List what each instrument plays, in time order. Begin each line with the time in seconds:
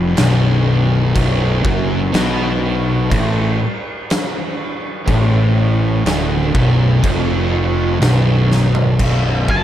Already playing: picked electric bass F1, distorted electric guitar F2
0.17 picked electric bass B0, distorted electric guitar B1, snare, crash
1.15 picked electric bass B0, distorted electric guitar B1, kick, crash
1.63 picked electric bass F#1, distorted electric guitar F#2, kick
2.12 picked electric bass B1, distorted electric guitar B2, snare, crash
3.11 picked electric bass A1, distorted electric guitar A2, kick, crash
4.10 snare, crash
5.08 picked electric bass A1, distorted electric guitar A2, kick, crash
6.05 picked electric bass D1, distorted electric guitar D2, snare, crash
6.54 picked electric bass B0, distorted electric guitar B1, kick
7.03 picked electric bass F1, distorted electric guitar F2, kick, crash
8.00 picked electric bass B0, distorted electric guitar B1, snare, crash
8.52 snare
8.75 floor tom
8.99 picked electric bass B0, distorted electric guitar B1, kick, crash
9.48 picked electric bass F#1, distorted electric guitar F#2, lead electric guitar A5, kick